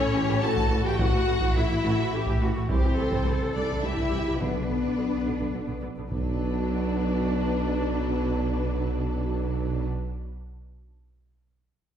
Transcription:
Already playing: C#4 A4 C#5
0.02 A1
0.13 A1 E3 A3 G4
0.28 A1 E3 A3
0.41 A1 E3 A3 F#4 A4 A5
0.56 A1 E3 A3, taiko
0.71 A1 E3 A3
0.84 A1 E3 A3 G4 G5
0.98 A1 E3 A3 F#4 F#5, taiko
1.13 A1 E3 A3
1.27 A1 E3 A3
1.40 A1 E3 A3, taiko
1.55 A1 E3 A3 E4 E5
1.70 A1 E3 A3
1.84 A1 E3 A3 F#4
1.99 A1 E3 A3
2.13 A1 E3 A3 G4
2.26 A1 E3 A3, taiko
2.41 A1 E3 A3 F#4
2.56 A1 E3 A3
2.69 C2 E3 G3 C4 G4 C5, taiko
2.84 C2 E3 G3
2.97 C2 E3 G3 A4
3.12 C2 E3 G3, taiko
3.26 C2 E3 G3
3.41 C2 E3 G3
3.55 C2 E3 G3 D4 D5
3.69 C2 E3 G3
3.82 C2 E3 G3 E4 G4 E5
3.97 C2 E3 G3, taiko
4.11 C2 E3 G3
4.27 C2 E3 G3
4.39 B1 B2 D3 B3 D4 B4
4.55 B1 D3 B3
4.69 B1 D3 B3
4.83 B1 D3 B3
4.97 B1 D3 B3
5.11 B1 D3 B3
5.25 B1 D3 B3
5.40 B1 D3 B3
5.54 B1 D3 B3
5.68 B1 D3 B3
5.82 B1 D3 B3
5.96 B1 D3 B3
6.09 B1 B2 F#3 B3 D4 B4, taiko

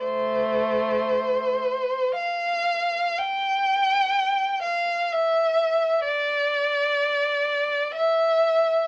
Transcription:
0.04 A3 C5
2.16 F5
3.18 G5
4.63 F5
5.12 E5
6.05 D5
7.95 E5

